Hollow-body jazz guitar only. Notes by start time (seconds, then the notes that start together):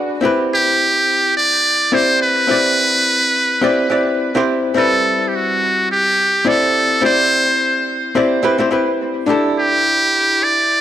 Already playing: D4 F#4 G#4 B4
0.21 C4 E4 G4 B4
1.92 C4 E4 G4 D5
2.47 C4 E4 G4 D5
3.61 C4 E4 G4 D5
3.90 C4 E4 G4 D5
4.35 C4 E4 G4 C5
4.74 G3 C4 E4 B4
6.45 C4 E4 G4 D5
7.01 C4 E4 G4 D5
8.15 C4 E4 G4 D5
8.43 C4 E4 G4 B4
8.58 C4 E4 G4 C5
8.71 C4 E4 G4 B4
9.26 D4 E4 G4 A4